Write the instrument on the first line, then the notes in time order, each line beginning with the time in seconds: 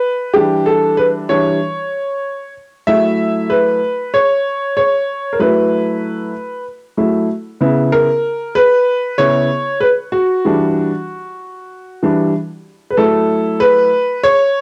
upright piano
Already playing: B4
0.34 E3 G3 D4 G4
0.66 A4
0.97 B4
1.29 E3 G3 D4 C#5
2.87 F#3 A3 E4 E5
3.50 B4
4.14 C#5
4.77 C#5
5.33 A#4
5.39 F#3 A3 E4 B4
6.97 F#3 A3 E4
7.61 C#3 B3 E4
7.92 A#4
8.55 B4
9.18 C#3 B3 E4 C#5
9.81 B4
10.12 F#4
10.45 E3 G3 D4
12.03 E3 G3 D4
12.90 B4
12.97 F#3 A3 E4 A4
13.60 B4
14.24 C#5